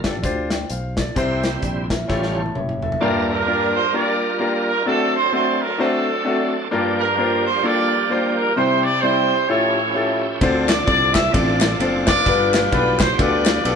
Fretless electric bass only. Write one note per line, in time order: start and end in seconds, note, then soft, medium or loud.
0.00 0.24 F1 medium
0.24 0.63 D2 medium
0.70 1.10 B1 medium
1.16 1.56 C2 medium
1.63 2.02 A#1 medium
2.10 2.49 A1 medium
2.56 2.95 F#1 medium
10.41 10.81 D2 loud
10.88 11.27 C2 medium
11.34 11.73 A1 loud
11.80 12.19 F#1 loud
12.26 12.66 G1 loud
12.73 13.12 B1 medium
13.19 13.58 D2 loud
13.65 13.75 B1 medium